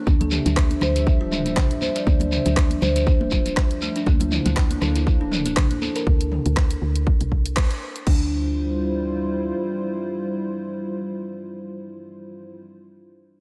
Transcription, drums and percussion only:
0.07 kick loud
0.07 high conga medium
0.07 shekere soft
0.21 closed hi-hat soft
0.21 high conga medium
0.21 low conga medium
0.31 mid tom medium
0.31 shekere loud
0.46 closed hi-hat medium
0.46 high conga medium
0.46 low conga loud
0.46 shekere medium
0.56 kick loud
0.56 cross-stick loud
0.56 clap medium
0.56 shekere soft
0.70 closed hi-hat soft
0.70 high conga medium
0.81 cross-stick medium
0.81 low conga medium
0.81 shekere loud
0.96 closed hi-hat medium
0.96 shekere medium
1.07 kick loud
1.07 shekere soft
1.32 mid tom medium
1.32 shekere medium
1.46 closed hi-hat medium
1.46 high conga medium
1.46 shekere medium
1.57 kick loud
1.57 cross-stick loud
1.57 clap loud
1.57 mid tom medium
1.57 shekere soft
1.71 closed hi-hat soft
1.82 high conga medium
1.82 shekere medium
1.96 closed hi-hat medium
1.96 shekere medium
2.07 kick loud
2.07 high conga loud
2.07 shekere soft
2.20 closed hi-hat soft
2.20 high conga medium
2.20 low conga medium
2.32 mid tom medium
2.32 shekere medium
2.46 closed hi-hat medium
2.46 high conga medium
2.46 low conga loud
2.46 shekere medium
2.57 kick loud
2.57 cross-stick loud
2.57 clap loud
2.70 closed hi-hat soft
2.70 high conga medium
2.82 low conga medium
2.82 shekere medium
2.96 closed hi-hat medium
2.96 shekere medium
3.07 kick loud
3.07 shekere soft
3.21 high conga loud
3.31 kick medium
3.31 low conga loud
3.31 shekere loud
3.46 closed hi-hat medium
3.46 high conga medium
3.46 shekere medium
3.57 kick loud
3.57 cross-stick loud
3.57 clap loud
3.57 shekere soft
3.71 closed hi-hat soft
3.82 shekere medium
3.96 closed hi-hat medium
3.96 shekere soft
4.06 kick loud
4.06 high conga loud
4.06 shekere soft
4.20 closed hi-hat soft
4.20 high conga medium
4.20 low conga medium
4.32 mid tom medium
4.32 shekere medium
4.46 closed hi-hat medium
4.46 high conga medium
4.46 low conga loud
4.46 shekere medium
4.57 kick loud
4.57 cross-stick loud
4.57 clap loud
4.57 shekere soft
4.71 closed hi-hat soft
4.71 high conga medium
4.82 cross-stick medium
4.82 low conga medium
4.82 shekere medium
4.96 closed hi-hat medium
4.96 shekere soft
5.07 kick loud
5.07 shekere soft
5.32 mid tom loud
5.32 shekere medium
5.45 closed hi-hat medium
5.45 high conga medium
5.45 shekere medium
5.57 kick loud
5.57 cross-stick loud
5.57 clap loud
5.57 mid tom medium
5.71 closed hi-hat soft
5.82 high conga medium
5.82 shekere medium
5.95 closed hi-hat medium
5.95 shekere medium
6.07 kick loud
6.21 closed hi-hat soft
6.32 mid tom medium
6.46 closed hi-hat medium
6.57 kick loud
6.57 cross-stick loud
6.57 clap loud
6.71 closed hi-hat soft
6.96 closed hi-hat medium
7.07 kick loud
7.21 closed hi-hat soft
7.32 kick medium
7.46 closed hi-hat medium
7.56 kick loud
7.56 cross-stick loud
7.56 clap loud
7.71 closed hi-hat soft
7.96 closed hi-hat medium
8.07 kick loud
8.07 crash medium

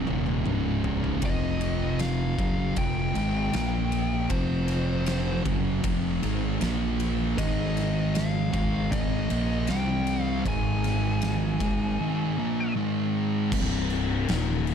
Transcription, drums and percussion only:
0.07 high tom medium
0.26 high tom medium
0.46 mid tom medium
0.84 floor tom medium
1.04 floor tom medium
1.22 kick loud
1.22 ride loud
1.61 ride medium
1.99 snare loud
1.99 ride medium
2.39 kick loud
2.39 ride medium
2.76 kick loud
2.76 ride medium
3.15 ride medium
3.53 snare loud
3.53 ride medium
3.92 ride medium
4.30 kick loud
4.30 ride medium
4.68 snare soft
4.68 ride medium
5.06 snare loud
5.06 ride medium
5.46 kick loud
5.46 ride medium
5.84 kick loud
5.84 ride loud
6.23 ride medium
6.61 snare loud
6.61 ride medium
7.00 ride medium
7.38 kick loud
7.38 ride loud
7.77 snare soft
7.77 ride medium
8.15 snare loud
8.15 ride medium
8.54 kick loud
8.54 ride medium
8.92 kick loud
8.92 ride loud
9.30 ride medium
9.67 snare loud
9.67 ride medium
10.07 ride medium
10.46 kick loud
10.46 ride medium
10.84 snare soft
10.84 ride medium
11.22 snare loud
11.22 ride medium
11.60 kick loud
11.60 ride medium
13.52 kick loud
13.52 crash loud
13.52 crash medium
13.90 crash medium
14.28 snare loud
14.28 crash medium
14.67 crash medium

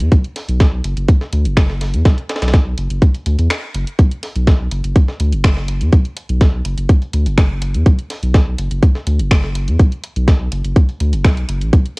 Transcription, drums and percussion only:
0.00 closed hi-hat soft
0.12 kick loud
0.12 closed hi-hat medium
0.24 closed hi-hat soft
0.36 snare soft
0.36 closed hi-hat medium
0.36 open hi-hat medium
0.49 closed hi-hat soft
0.60 kick loud
0.60 snare loud
0.60 closed hi-hat medium
0.84 closed hi-hat medium
0.97 closed hi-hat soft
1.08 kick loud
1.08 closed hi-hat medium
1.21 snare soft
1.33 closed hi-hat medium
1.45 closed hi-hat soft
1.57 finger snap loud
1.57 kick loud
1.57 snare loud
1.57 closed hi-hat medium
1.70 snare soft
1.81 snare soft
1.81 closed hi-hat medium
1.81 open hi-hat medium
1.94 closed hi-hat soft
2.05 kick loud
2.05 snare loud
2.05 closed hi-hat medium
2.18 closed hi-hat soft
2.29 snare medium
2.29 closed hi-hat medium
2.36 snare medium
2.36 closed hi-hat medium
2.42 snare medium
2.42 closed hi-hat soft
2.42 closed hi-hat medium
2.48 snare medium
2.48 closed hi-hat medium
2.54 kick loud
2.54 snare loud
2.54 closed hi-hat medium
2.78 closed hi-hat medium
2.90 closed hi-hat soft
3.02 kick loud
3.02 closed hi-hat medium
3.15 closed hi-hat soft
3.26 closed hi-hat medium
3.39 closed hi-hat soft
3.50 finger snap loud
3.50 snare loud
3.50 closed hi-hat medium
3.75 closed hi-hat medium
3.87 closed hi-hat soft
3.99 kick loud
3.99 closed hi-hat medium
4.11 closed hi-hat soft
4.23 snare soft
4.23 closed hi-hat medium
4.23 open hi-hat medium
4.36 closed hi-hat soft
4.47 kick loud
4.47 snare loud
4.47 closed hi-hat medium
4.71 closed hi-hat medium
4.84 closed hi-hat soft
4.96 kick loud
4.96 closed hi-hat medium
5.08 snare soft
5.20 closed hi-hat medium
5.32 closed hi-hat soft
5.44 finger snap loud
5.44 kick loud
5.44 snare loud
5.44 closed hi-hat medium
5.57 snare soft
5.68 closed hi-hat medium
5.81 closed hi-hat soft
5.92 kick loud
5.92 closed hi-hat medium
6.05 closed hi-hat soft
6.16 closed hi-hat loud
6.16 closed hi-hat medium
6.29 closed hi-hat soft
6.41 kick loud
6.41 snare loud
6.41 closed hi-hat medium
6.65 closed hi-hat medium
6.78 closed hi-hat soft
6.89 kick loud
6.89 closed hi-hat medium
7.02 closed hi-hat soft
7.13 closed hi-hat medium
7.13 closed hi-hat loud
7.26 closed hi-hat soft
7.37 finger snap loud
7.37 kick loud
7.37 snare loud
7.37 closed hi-hat medium
7.62 closed hi-hat medium
7.62 closed hi-hat loud
7.74 closed hi-hat soft
7.86 kick loud
7.86 closed hi-hat medium
7.99 closed hi-hat soft
8.10 snare soft
8.10 closed hi-hat loud
8.10 open hi-hat medium
8.23 closed hi-hat soft
8.34 kick loud
8.34 snare loud
8.34 closed hi-hat medium
8.58 closed hi-hat loud
8.58 closed hi-hat medium
8.71 closed hi-hat soft
8.83 kick loud
8.83 closed hi-hat medium
8.95 snare medium
9.07 closed hi-hat medium
9.07 closed hi-hat loud
9.19 closed hi-hat soft
9.31 finger snap loud
9.31 kick loud
9.31 snare loud
9.31 closed hi-hat medium
9.44 snare soft
9.55 closed hi-hat loud
9.55 closed hi-hat medium
9.68 closed hi-hat soft
9.79 kick loud
9.79 closed hi-hat soft
9.79 closed hi-hat medium
9.92 closed hi-hat soft
10.04 closed hi-hat loud
10.04 closed hi-hat medium
10.16 closed hi-hat soft
10.28 kick loud
10.28 snare loud
10.28 closed hi-hat medium
10.52 closed hi-hat loud
10.52 closed hi-hat medium
10.65 closed hi-hat soft
10.76 kick loud
10.76 closed hi-hat medium
10.89 closed hi-hat soft
11.00 closed hi-hat loud
11.00 closed hi-hat medium
11.13 closed hi-hat soft
11.25 finger snap loud
11.25 kick loud
11.25 snare loud
11.25 closed hi-hat medium
11.37 closed hi-hat soft
11.49 closed hi-hat loud
11.49 closed hi-hat medium
11.61 closed hi-hat soft
11.73 kick loud
11.73 closed hi-hat medium
11.73 closed hi-hat soft
11.86 closed hi-hat soft

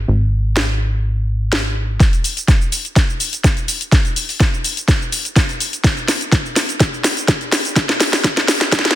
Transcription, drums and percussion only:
0.57 snare loud
1.52 snare loud
2.00 kick loud
2.00 snare soft
2.00 closed hi-hat medium
2.00 shaker soft
2.13 closed hi-hat soft
2.13 shaker soft
2.24 open hi-hat loud
2.24 shaker medium
2.37 closed hi-hat medium
2.37 shaker soft
2.48 kick loud
2.48 snare soft
2.48 closed hi-hat medium
2.48 shaker soft
2.62 shaker soft
2.72 open hi-hat loud
2.72 shaker medium
2.85 closed hi-hat medium
2.85 shaker soft
2.96 kick loud
2.96 snare medium
2.96 closed hi-hat medium
2.96 shaker soft
3.10 shaker soft
3.20 open hi-hat loud
3.20 shaker medium
3.33 closed hi-hat medium
3.33 shaker soft
3.44 kick loud
3.44 snare medium
3.44 closed hi-hat medium
3.44 shaker soft
3.57 closed hi-hat soft
3.57 shaker soft
3.68 open hi-hat loud
3.68 shaker medium
3.81 closed hi-hat medium
3.81 shaker soft
3.92 kick loud
3.92 snare medium
3.92 closed hi-hat medium
3.92 shaker soft
4.05 closed hi-hat soft
4.05 shaker soft
4.16 open hi-hat loud
4.16 shaker medium
4.29 open hi-hat medium
4.29 shaker soft
4.40 kick loud
4.40 snare medium
4.40 shaker soft
4.54 shaker soft
4.64 open hi-hat loud
4.64 shaker medium
4.77 closed hi-hat medium
4.77 shaker soft
4.88 kick loud
4.88 snare medium
4.88 closed hi-hat medium
4.88 shaker soft
5.02 shaker soft
5.12 open hi-hat loud
5.12 shaker medium
5.25 closed hi-hat medium
5.25 shaker soft
5.36 kick loud
5.36 snare medium
5.36 closed hi-hat medium
5.36 shaker soft
5.49 closed hi-hat soft
5.49 shaker soft
5.60 open hi-hat loud
5.60 shaker medium
5.73 closed hi-hat medium
5.73 shaker soft
5.84 kick loud
5.84 snare medium
5.84 closed hi-hat medium
5.84 shaker soft
5.97 closed hi-hat soft
5.97 shaker soft
6.08 snare medium
6.08 open hi-hat loud
6.08 shaker medium
6.21 closed hi-hat medium
6.21 shaker soft
6.32 kick loud
6.32 snare medium
6.32 closed hi-hat medium
6.32 shaker soft
6.46 shaker soft
6.56 snare medium
6.56 open hi-hat loud
6.56 shaker medium
6.69 closed hi-hat soft
6.69 shaker soft
6.80 kick loud
6.80 snare medium
6.80 closed hi-hat medium
6.80 shaker soft
6.94 shaker soft
7.04 snare medium
7.04 open hi-hat loud
7.04 shaker medium
7.17 closed hi-hat medium
7.17 shaker soft
7.28 kick loud
7.28 snare medium
7.28 closed hi-hat medium
7.28 shaker soft
7.41 closed hi-hat soft
7.41 shaker soft
7.52 snare medium
7.52 open hi-hat loud
7.52 shaker medium
7.65 closed hi-hat soft
7.65 shaker soft
7.76 kick loud
7.76 snare medium
7.76 closed hi-hat medium
7.76 shaker soft
7.89 snare medium
7.89 closed hi-hat soft
7.89 shaker soft
8.00 snare loud
8.00 open hi-hat loud
8.00 shaker medium
8.13 snare medium
8.13 open hi-hat medium
8.13 shaker soft
8.24 kick loud
8.24 snare medium
8.24 shaker soft
8.37 snare medium
8.37 closed hi-hat soft
8.37 shaker soft
8.48 snare loud
8.48 open hi-hat loud
8.48 shaker medium
8.61 snare medium
8.61 closed hi-hat soft
8.61 shaker soft
8.72 kick loud
8.72 snare loud
8.72 closed hi-hat medium
8.72 shaker soft
8.79 snare medium
8.85 snare medium
8.85 shaker soft
8.91 snare medium

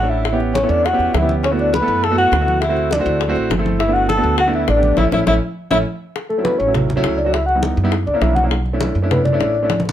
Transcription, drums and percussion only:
0.25 high bongo medium
0.25 high conga soft
0.40 high bongo soft
0.40 high conga soft
0.55 high bongo medium
0.55 high conga medium
0.70 high bongo soft
0.70 high conga soft
0.85 high bongo medium
0.85 high conga soft
1.00 high bongo soft
1.00 high conga soft
1.14 high bongo medium
1.14 low bongo loud
1.14 high conga medium
1.29 high conga medium
1.44 high bongo medium
1.44 high conga soft
1.59 high conga soft
1.74 high bongo medium
1.74 high conga medium
1.88 high conga soft
2.03 high bongo medium
2.03 high conga soft
2.18 high conga soft
2.33 high bongo medium
2.33 low bongo medium
2.33 high conga soft
2.48 high conga medium
2.62 high bongo medium
2.62 high conga soft
2.76 high bongo soft
2.76 high conga soft
2.91 high bongo medium
2.91 high conga loud
3.06 high bongo soft
3.06 high conga soft
3.21 high bongo medium
3.21 high conga soft
3.36 high bongo soft
3.36 high conga soft
3.51 high bongo medium
3.51 low bongo medium
3.51 high conga loud
3.66 high conga medium
3.80 high bongo medium
3.80 high conga soft
3.96 high conga soft
4.09 high bongo medium
4.09 high conga medium
4.24 high conga soft
4.38 high bongo medium
4.38 high conga soft
4.54 high conga soft
4.68 high bongo medium
4.68 low bongo medium
4.68 high conga soft
4.83 high conga medium
4.97 low bongo loud
4.97 high conga loud
5.12 low bongo loud
5.12 high conga loud
5.27 low bongo loud
5.27 high conga medium
5.71 low bongo loud
5.71 high conga loud
6.16 high bongo medium
6.16 high conga soft
6.30 high conga soft
6.45 high bongo medium
6.45 high conga loud
6.60 high conga soft
6.74 high bongo medium
6.74 high conga soft
6.74 low conga medium
6.90 high conga soft
6.90 low conga medium
7.04 high bongo medium
7.04 low bongo medium
7.04 high conga soft
7.34 high bongo medium
7.34 high conga soft
7.49 high bongo soft
7.49 high conga soft
7.63 high bongo medium
7.63 high conga medium
7.77 high bongo soft
7.77 high conga soft
7.92 high bongo medium
7.92 high conga soft
8.07 high bongo soft
8.07 high conga soft
8.22 high bongo medium
8.22 low bongo medium
8.22 high conga medium
8.36 high conga medium
8.51 high bongo medium
8.51 high conga soft
8.66 high conga soft
8.81 high bongo medium
8.81 high conga medium
8.96 high conga soft
9.11 high bongo medium
9.11 high conga soft
9.11 low conga medium
9.25 high conga soft
9.25 low conga medium
9.40 high bongo medium
9.40 low bongo medium
9.40 high conga soft
9.70 high bongo medium
9.70 high conga medium
9.80 high conga loud
9.85 high bongo soft
9.85 high conga medium

